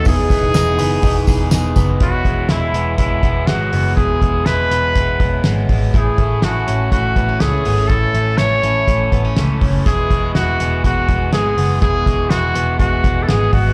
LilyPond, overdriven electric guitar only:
\new Staff \with { instrumentName = "Overdriven electric guitar" } { \time 4/4 \key e \major \tempo 4 = 122 <e, b, e b dis' gis'>8 <e b dis' gis'>8 <e b dis' gis'>8 <e b dis' gis'>8 <e, b, e b dis' gis'>8 <e b dis' gis'>8 <e b dis' gis'>8 <e b dis' gis'>8 | <e, b, fis gis b e'>8 <fis gis b e'>8 <fis gis b e'>8 <fis gis b e'>8 <e, b, fis gis b e'>8 <fis gis b e'>8 <fis gis b e'>8 <fis gis b e'>8 | <e, b, fis gis b e'>8 <fis gis b e'>8 <fis gis b e'>8 <fis gis b e'>8 <e, b, fis gis b e'>8 <fis gis b e'>8 <fis gis b e'>8 <fis gis b e'>8 | <a, e a cis' e'>8 <a cis' e'>8 <e a cis' e'>8 <a cis' e'>8 <a, e a cis' e'>8 <a cis' e'>8 <e a cis' e'>8 <a cis' e'>8 |
<a, e a cis' e'>8 <a cis' e'>8 <e a cis' e'>8 <a cis' e'>8 <a, e a cis' e'>8 <a cis' e'>8 <e a cis' e'>8 <a cis' e'>8 | <e, b, e gis b fis'>8 <e gis b fis'>8 <e gis b fis'>8 <e gis b fis'>8 <e, b, e gis b fis'>8 <e gis b fis'>8 <e gis b fis'>8 <e gis b fis'>8 | <e, b, e gis b fis'>8 <e gis b fis'>8 <e gis b fis'>8 <e gis b fis'>8 <e, b, e gis b fis'>8 <e gis b fis'>8 <e gis b fis'>8 <e gis b fis'>8 | }